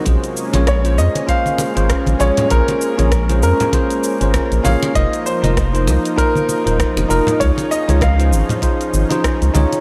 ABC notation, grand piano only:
X:1
M:4/4
L:1/8
Q:"Swing 16ths" 1/4=98
K:Bbm
V:1 name="Grand piano"
z2 d e f3 d | B3 B4 f | e c2 z B2 z B | d e f4 z2 |]